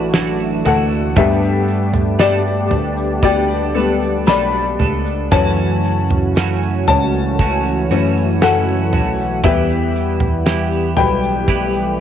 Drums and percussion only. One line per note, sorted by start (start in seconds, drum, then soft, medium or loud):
0.13 snare loud
0.13 shaker medium
0.39 shaker medium
0.65 floor tom medium
0.92 shaker soft
1.17 kick loud
1.17 floor tom loud
1.17 shaker medium
1.42 shaker soft
1.68 shaker medium
1.93 floor tom medium
1.93 shaker soft
2.20 snare loud
2.20 shaker medium
2.46 shaker medium
2.71 floor tom medium
2.71 shaker soft
2.97 shaker medium
3.23 kick medium
3.23 shaker medium
3.49 shaker soft
3.75 shaker soft
4.01 shaker soft
4.26 snare loud
4.26 shaker medium
4.52 shaker soft
4.80 floor tom medium
5.06 shaker soft
5.32 kick loud
5.32 floor tom loud
5.32 shaker medium
5.57 shaker soft
5.84 shaker medium
6.09 floor tom medium
6.09 shaker soft
6.35 snare loud
6.35 shaker medium
6.62 shaker soft
6.88 floor tom medium
6.88 shaker medium
7.13 shaker medium
7.39 kick medium
7.39 shaker medium
7.64 shaker medium
7.90 shaker soft
8.16 shaker soft
8.42 snare loud
8.42 shaker medium
8.67 shaker medium
8.93 floor tom medium
9.19 shaker soft
9.44 kick loud
9.44 floor tom loud
9.44 shaker medium
9.70 shaker medium
9.95 shaker medium
10.20 floor tom medium
10.20 shaker soft
10.46 snare loud
10.46 shaker medium
10.72 shaker medium
10.96 floor tom medium
10.96 shaker medium
11.22 shaker soft
11.48 kick loud
11.48 shaker medium
11.73 shaker medium